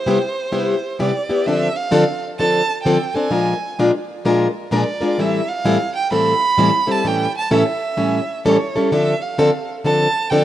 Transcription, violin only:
Already playing: C5
1.01 D5
1.46 E5
1.76 F5
2.39 A5
2.83 G5
3.14 G#5
4.74 D5
5.21 E5
5.49 F5
5.95 G5
6.13 B5
6.92 A5
7.07 G5
7.38 A5
7.54 E5
8.47 C#5
8.94 E5
9.22 F5
9.85 A5
10.30 G5

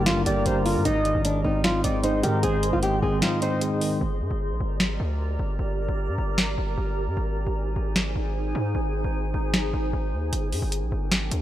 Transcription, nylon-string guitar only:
0.06 F4
0.26 G4
0.65 F4
0.85 D#4
1.25 D4
1.44 D#4
1.64 F4
1.84 D#4
2.04 D#4
2.23 G4
2.43 G#4
2.73 F4
2.83 G4
3.02 G#4
3.23 F4
3.42 D#4

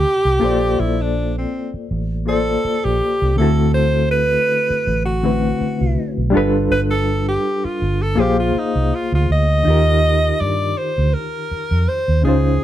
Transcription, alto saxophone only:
Already playing: G4
0.80 E4
1.01 D4
1.38 C4
2.28 A4
2.84 G4
3.38 A4
3.74 C5
4.11 B4
5.05 F#4
6.71 B4
6.91 A4
7.28 G4
7.65 F4
8.02 A4
8.20 G4
8.40 F4
8.58 D#4
8.95 F4
9.15 F4
9.32 D#5
10.41 D5
10.78 C5
11.14 A#4
11.88 C5
12.25 G#4

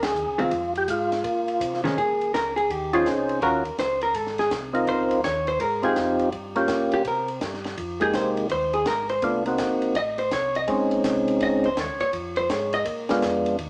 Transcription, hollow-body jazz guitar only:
0.38 D#3 G#3 C4
1.84 D#3 G#3 C#4
1.98 G#4
2.34 A#4
2.56 G#4
2.71 G4
2.93 F4
3.43 A#4
3.79 C5
4.03 A#4
4.16 A4
4.39 G#4
4.89 C5
5.24 C#5
5.48 C5
5.61 A#4
5.85 G#4
6.94 G4
7.08 A#4
8.02 G#4
8.15 C5
8.52 C5
8.74 G#4
8.88 A#4
9.10 C5
9.96 D#5
10.19 C5
10.33 C#5
10.56 D#5
11.43 D#5
11.66 C5
11.79 C#5
12.01 C#5
12.37 C5
12.51 C#5
12.74 D#5

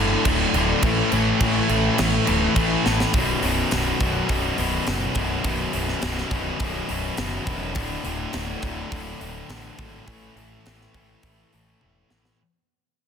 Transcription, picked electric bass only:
Already playing: G1
0.26 D1
0.54 D1
0.83 A1
1.12 A1
1.41 A1
1.70 A1
2.00 A1
2.29 D1
2.56 A1
2.86 A1
3.14 B0
3.43 B0
3.72 B0
4.00 B0
4.29 B0
4.59 B0
4.87 F#1
5.16 B0
5.45 B0
5.74 B0
6.02 B0
6.31 B0
6.60 B0
6.90 B0
7.18 F#1
7.47 E1
7.76 D1
8.05 D1
8.34 D1
8.63 D1
8.92 D1
9.21 D1
9.49 A1
9.79 G#1
10.08 A1
10.36 A1
10.67 A1
10.95 A1
11.24 A1
11.54 A1
11.84 E1
12.11 A1

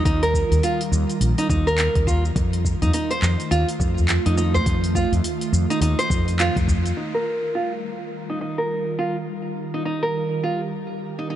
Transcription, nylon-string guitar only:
0.05 D#4
0.23 A#4
0.63 F4
1.38 D#4
1.50 D#4
1.67 A#4
2.07 F4
2.82 D#4
2.94 D#4
3.11 C5
3.51 F4
4.26 D#4
4.37 D#4
4.54 C5
4.95 F4
5.70 D#4
5.82 D#4
5.99 C5
6.40 F4
6.97 D#4
7.14 A#4
7.55 F4
8.30 D#4
8.41 D#4
8.58 A#4
8.99 F4
9.74 D#4
9.85 D#4
10.03 A#4
10.43 F4
11.19 D#4
11.30 D#4

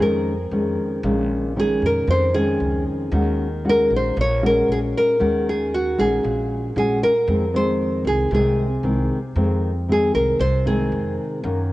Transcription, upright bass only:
0.00 F2
0.51 F2
1.03 A#1
1.82 F2
2.07 F2
2.60 C#2
3.12 D#2
3.90 A#1
4.17 A#1
4.68 A#1
5.21 D#2
5.98 A#1
6.24 A#1
6.76 A#1
7.28 F2
8.05 C2
8.31 C2
8.83 C2
9.36 F2
10.14 C2
10.39 C2
10.92 F2
11.44 F#2

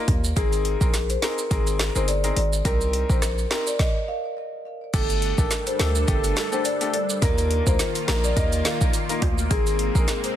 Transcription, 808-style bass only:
0.08 D#2
0.37 G#1
0.81 A#1
1.51 G#1
1.96 G1
2.37 G#1
2.65 C2
3.10 A#1
4.94 G1
5.38 A1
5.79 D2
6.08 G1
7.22 D#2
7.67 D2
8.08 A#1
8.37 D#2
9.22 D2
9.51 G#1
9.95 A#1

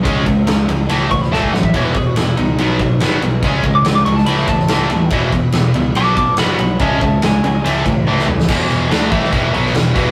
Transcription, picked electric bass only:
0.05 C#2
0.27 C#2
0.47 C#2
0.68 C#2
0.89 C#2
1.11 C#2
1.31 C#2
1.53 F#2
1.74 E1
2.16 E1
2.37 C#2
2.59 B1
3.01 F#1
3.22 B1
3.43 C#2
3.64 C#2
3.84 C#2
4.06 C#2
4.26 C#2
4.48 C#2
4.69 C#2
4.91 D#2
5.11 E1
5.54 E1
5.75 C#2
5.96 B1
6.39 F#1
6.59 B1
6.80 C#2
7.01 C#2
7.22 C#2
7.43 C#2
7.65 C#2
7.86 C#2
8.07 C#2
8.27 C#2
8.49 E1
8.91 D2
9.12 A1
9.33 E1
9.54 B1
9.74 E1
9.96 E1

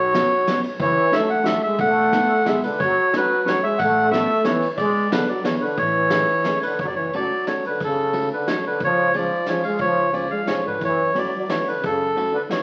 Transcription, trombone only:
Already playing: F#3
0.80 E3
1.15 A3
1.31 A3
1.46 A3
1.65 G#3
1.80 A3
2.46 G#3
2.65 D3
2.83 F#3
3.15 F#3
3.47 F#3
3.64 G#3
3.82 A3
4.13 A3
4.47 E3
4.79 G#3
5.11 D3
5.28 F#3
5.43 E3
5.61 D3
5.79 E3
6.65 D3
6.84 F#3
6.96 E3
7.15 F#3
7.50 F#3
7.67 D3
7.84 C#3
8.34 D3
8.50 F#3
8.66 D3
8.83 F3
9.16 F3
9.50 F3
9.65 G#3
9.82 F3
10.13 F3
10.30 G#3
10.45 F3
10.64 D3
10.79 E3
11.14 F#3
11.26 F#3
11.36 F#3
11.48 E3
11.65 D3
11.80 C#3
12.32 D3
12.48 E3

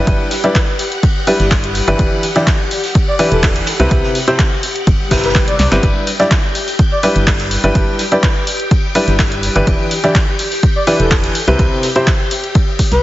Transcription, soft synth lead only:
0.44 B4
1.27 G4
1.40 G4
3.08 D5
3.19 D5
3.32 A4
5.24 B4
5.48 D5
5.59 D5
6.92 D5
7.03 D5
8.12 B4
8.95 G4
9.08 G4
10.76 D5
10.87 D5
11.00 A4
12.92 B4

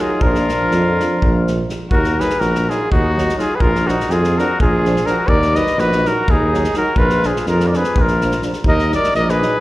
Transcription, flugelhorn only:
0.01 F4
0.24 F4
1.91 F#4
2.20 G#4
2.41 F#4
2.69 F4
2.91 D#4
3.38 F4
3.56 G#4
3.61 F4
3.91 D#4
4.14 F4
4.40 F#4
4.61 F4
5.09 F#4
5.29 A#4
5.57 B4
5.80 F#4
6.07 F#4
6.30 D#4
6.77 F#4
6.97 F4
7.24 F4
7.49 F4
7.67 A#4
7.75 G#4
7.98 F4
8.67 A#4
8.96 A#4
9.17 A#4
9.30 G#4

